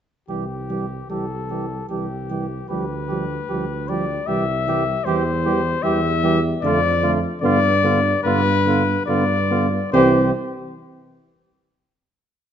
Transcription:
0.29 C2 E3 G3 G4
0.70 E3 G3 G4
1.10 C2 E3 G3 G4 A4
1.50 E3 G3 G4
1.89 C2 E3 G3 G4
2.30 E3 G3 G4
2.69 D2 F3 G3 G4 B4
3.08 F3 G3 G4
3.49 D2 F3 G3 G4
3.89 F3 G3 G4 D5
4.27 C2 E3 G3 G4 E5
4.67 E3 G3 G4
5.05 E2 E3 G3 G4 C5
5.44 E3 G3 G4
5.83 E2 E3 G3 G4 E5
6.24 E3 G3 G4
6.62 F2 D3 A3 F4 D5
7.02 D3 A3 F4
7.42 G2 D3 B3 F4 D5
7.83 D3 B3 F4
8.24 G2 D3 B3 F4 B4
8.66 D3 B3 F4
9.06 G2 D3 B3 F4 D5
9.51 D3 B3 F4
9.92 C2 E3 C4 G4 C5

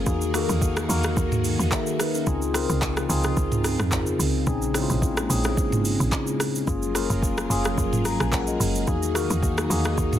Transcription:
Already playing: G#4 A#4
0.06 E2 D#3 A#3 D#4 F#4 G#4, kick, shaker
0.21 shaker
0.34 A#3 D#4 F#4 A4, cross-stick, open hi-hat, shaker
0.42 A#4
0.49 E2, shaker
0.62 kick, shaker
0.77 cross-stick, shaker
0.89 E2 A#3 D#4 F#4 A#4, open hi-hat, shaker
1.04 cross-stick, shaker
1.17 D#2, kick, shaker
1.32 mid tom, shaker
1.44 open hi-hat, shaker
1.59 E2, shaker
1.72 G#4 E5, kick, clap, shaker
1.86 shaker
2.00 D#4 B4, cross-stick, open hi-hat, shaker
2.14 C#4 A#4, shaker
2.26 C#2 C#3 C4 D#4 F4 G#4, kick, shaker
2.42 shaker
2.54 C4 D#4 F4 A#4, cross-stick, open hi-hat, shaker
2.70 C#2, shaker
2.82 kick, clap, shaker
2.97 cross-stick, shaker
3.09 C#2 C4 D#4 F4 G#4, open hi-hat, shaker
3.24 cross-stick, shaker
3.37 C#2, kick, shaker
3.52 mid tom, shaker
3.64 cross-stick, open hi-hat, shaker
3.80 F2, cross-stick, mid tom, shaker
3.92 kick, clap, shaker
4.06 shaker
4.19 C#2, open hi-hat, shaker
4.46 A#1 G#3 A#3 C4 C#4 D#4 G#4, kick, shaker
4.62 shaker
4.74 C4 C#4 D#4 E4, cross-stick, open hi-hat, shaker
4.82 F4
4.90 A#1, shaker
5.02 kick, shaker
5.17 cross-stick, shaker
5.29 A#1 C4 C#4 D#4 G#4, open hi-hat, shaker
5.44 cross-stick, shaker
5.57 G#1, kick, shaker
5.72 mid tom, shaker
5.85 open hi-hat, shaker
6.00 A#1, shaker
6.12 kick, clap, shaker
6.27 shaker
6.40 cross-stick, open hi-hat, shaker
6.55 shaker
6.67 F#1 F#3 A#3 C#4 F4 G#4 A#4, kick, shaker
6.83 shaker
6.95 A#3 C#4 F4 A#4, cross-stick, open hi-hat, shaker
7.10 F#1, shaker
7.23 kick, shaker
7.38 cross-stick, shaker
7.50 F#1 A#3 C#4 F4 G#4, open hi-hat, shaker
7.65 cross-stick, shaker
7.78 F#1, kick, shaker
7.93 mid tom, shaker
8.05 A#5, cross-stick, open hi-hat, shaker
8.20 A#1 G#5, cross-stick, shaker
8.32 F#5, kick, clap, shaker
8.47 D#5, shaker
8.60 F#1, open hi-hat, shaker
8.75 shaker
8.87 E2 D#3 A#3 D#4 F#4 G#4, kick, shaker
9.03 shaker
9.14 A#3 D#4 F#4 A#4, cross-stick, open hi-hat, shaker
9.30 E2, shaker
9.43 kick, shaker
9.58 cross-stick, shaker
9.70 E2 A#3 D#4 F#4 G#4, open hi-hat, shaker
9.85 cross-stick, shaker
9.98 D#2, kick, shaker
10.13 mid tom, shaker

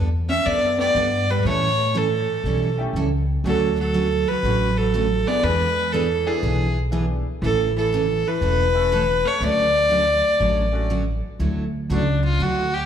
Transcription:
Already playing: E2
0.29 C#4 E5
0.46 F#2 G3 B3 D4 A4 D5
0.78 A3 B3 D4 G4 D5
0.95 G2 G3 B3 D4 A4
1.30 G3 B4
1.41 A2 G3 B4
1.46 E3 G3 A3 C#4 E4 A4 C#5
1.94 E3 G3 C#4 E4 A4
2.44 B1 E3 G3 C#4 E4 A4
2.78 A3 C#4 E4 G4
2.93 C#2 E3 G3 C#4 E4 A4
3.44 D2 D3 F#3 A3 C#4 D4 F#4 A4
3.79 F#3 A4
3.94 D3 F#3 A3 C#4 F#4
4.28 F#3 B4
4.43 A1 D3 F#3 A3 C#4 F#4
4.77 F#3 A4
4.94 D3 F#3 A3 C#4 F#4
5.27 B3 D4 E4 G#4 D5
5.43 E2 E3 G#3 B3 D4 G#4 B4
5.92 E3 B3 D4 G#4 A4
6.26 E3 B3 D4 E4 G#4
6.43 B1 E3 B3 D4 G#4
6.91 E3 B3 D4 E4 G#4
7.42 A1 C#3 E3 A3 C#4 A4
7.77 E3 A4
7.93 C#3 E3 A3 C#4 A4
8.27 E3 B4
8.41 E1 C#3 E3 A3 C#4 A4
8.74 A3 C#4 E4 A4
8.92 C#3 E3 A3 C#4 A4
9.25 A3 C#5
9.40 D2 D3 F#3 A3 C#4 F#4 D5
9.89 D3 F#3 A3 C#4 F#4
10.40 A1 D3 F#3 A3 C#4 F#4
10.72 A3 C#4 D4 F#4
10.90 D3 F#3 A3 C#4 F#4
11.39 D2 D3 F#3 A3 E4 F#4
11.90 C#2 D3 F#3 A3 D4 E4 F#4
12.25 F4
12.39 D2 D3 F#3 A3 E4 F#4
12.73 G4

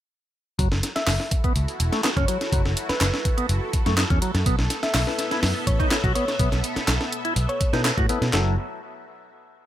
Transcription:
0.59 F#1 F#3 E4 F#4 A4, kick, closed hi-hat
0.72 F#1, snare
0.83 snare, closed hi-hat
0.96 E5, snare, closed hi-hat
1.07 F#1 E5, snare, clap, closed hi-hat, open hi-hat
1.20 snare
1.31 kick, closed hi-hat
1.44 B3, kick, closed hi-hat
1.56 C#2, closed hi-hat
1.68 closed hi-hat
1.80 E1, closed hi-hat
1.92 A3, snare, closed hi-hat
2.04 B3, snare, clap, closed hi-hat
2.17 F#1 C#4 C#5, kick, closed hi-hat
2.28 F#3 C#5, closed hi-hat
2.41 snare, closed hi-hat
2.52 F#1 F#3, kick, closed hi-hat
2.65 F#1, snare
2.77 closed hi-hat
2.89 B4, muted picked electric bass stroke, snare, closed hi-hat
3.00 F#1 B4, snare, clap, closed hi-hat
3.14 snare
3.25 kick, closed hi-hat
3.38 B3, closed hi-hat
3.49 F#1, closed hi-hat
3.73 kick, closed hi-hat
3.86 F#2 A3, snare, closed hi-hat
3.98 B3, snare, clap, closed hi-hat
4.10 E2 C#4, kick, closed hi-hat
4.22 F#3, closed hi-hat
4.35 F#2, snare, closed hi-hat
4.46 B1 B3 E5, kick, closed hi-hat
4.59 B1, snare
4.70 snare, closed hi-hat
4.83 E5, snare, closed hi-hat
4.94 B1 E5, snare, clap, closed hi-hat, open hi-hat
5.07 E4 A4 B4, snare
5.18 snare, closed hi-hat
5.31 E4, snare, closed hi-hat
5.43 F#2, snare, closed hi-hat, open hi-hat
5.67 A1 C#5, kick, closed hi-hat
5.79 D#4 C#5, kick, closed hi-hat
5.91 E4, snare, clap, closed hi-hat
6.04 B1 F#4, kick, closed hi-hat
6.15 B3 C#5, closed hi-hat
6.28 C#5, snare, closed hi-hat
6.39 B1 B3, kick, closed hi-hat
6.52 B1, snare, closed hi-hat
6.64 closed hi-hat
6.76 muted picked electric bass stroke, snare, closed hi-hat
6.88 B1, snare, clap, closed hi-hat
7.01 snare
7.12 closed hi-hat
7.25 E4, closed hi-hat
7.36 B1, closed hi-hat
7.49 C#5, closed hi-hat
7.61 kick, closed hi-hat
7.73 B2 D#4 E4 A4 B4, snare, closed hi-hat
7.85 E4, snare, clap, closed hi-hat
7.98 A2 F#4, kick, closed hi-hat
8.09 B3 E4 A4 B4, closed hi-hat
8.22 B2, snare, closed hi-hat
8.33 F#1 F#3 E4 F#4 A4, snare, clap

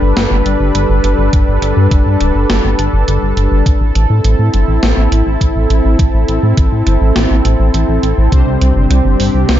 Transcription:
Already playing: G3 D4 A4 B4
0.02 G1
0.16 G1, snare, closed hi-hat
0.31 G1
0.46 G1, closed hi-hat
0.60 G1
0.75 G1, closed hi-hat
0.89 G1
1.04 G1, closed hi-hat
1.18 G1
1.33 G1, kick, closed hi-hat
1.47 G1
1.62 G1, closed hi-hat
1.77 G2
1.91 G1, kick, closed hi-hat
2.06 G2
2.21 D1, closed hi-hat
2.35 G1
2.49 G1, snare, closed hi-hat
2.64 G1
2.79 G1, closed hi-hat
2.93 G1
3.08 G1, closed hi-hat
3.22 G1
3.37 G1, closed hi-hat
3.52 G1
3.66 A1 C4 E4, kick, closed hi-hat
3.81 A1
3.95 A1, closed hi-hat
4.10 A2
4.24 A1, closed hi-hat
4.39 A2
4.54 G1, closed hi-hat
4.68 A1
4.83 A1, snare, closed hi-hat
4.97 A1
5.12 A1, closed hi-hat
5.26 A1
5.41 A1, kick, closed hi-hat
5.56 A1
5.70 A1, closed hi-hat
5.85 A1
5.99 A1, kick, closed hi-hat
6.14 A1
6.28 A1, closed hi-hat
6.43 A2
6.57 A1, kick, closed hi-hat
6.72 A2
6.87 G1, closed hi-hat
7.01 A1
7.16 A1, snare, closed hi-hat
7.30 A1
7.45 A1, closed hi-hat
7.59 A1
7.74 A1, closed hi-hat
7.89 A1
8.03 A1, closed hi-hat
8.18 A1
8.32 C2 C3 G3 C4 D4 G4 C5, kick, closed hi-hat
8.47 C2
8.61 C2, closed hi-hat
8.76 G1 C3 G3 C4 D4 G4 C5
8.90 C2, closed hi-hat
9.05 G1
9.20 G1, open hi-hat
9.34 C2
9.49 C2, snare, closed hi-hat

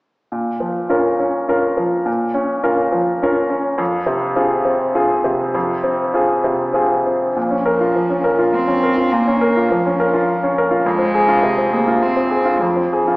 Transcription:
0.32 A#2
0.60 F3
0.89 C#4 F4 A#4
1.20 C#4
1.48 C#4 F4 A#4
1.77 F3
2.06 A#2
2.34 C#4
2.63 C#4 F4 A#4
2.92 F3
3.22 C#4 F4 A#4
3.50 C#4
3.78 F2
4.06 C3
4.36 C4 F4 G#4
4.65 C4
4.95 C4 F4 G#4
5.24 C3
5.54 F2
5.83 C4
6.14 C4 F4 G#4
6.44 C3
6.73 C4 F4 G#4
7.06 C4
7.36 A#2 F3
7.51 C#4
7.66 A#4
7.80 F4
7.96 F3
8.10 C#4
8.24 A#4
8.39 F4
8.55 C4
8.67 C#4
8.83 A#4
8.97 F4
9.12 A#2 A#3
9.27 C#4
9.41 A#4
9.57 F4
9.71 F3
9.86 C#4
10.00 A#4
10.14 F4
10.43 C#4
10.58 A#4
10.71 F4
10.85 F2 G#3
10.98 C4
11.14 G#4
11.28 F4
11.43 C3
11.58 C4
11.73 A#3 G#4
11.88 F4
12.02 C4
12.16 C4
12.30 G#4
12.45 F4
12.60 F2 F3
12.76 C4
12.93 G#4
13.08 F4

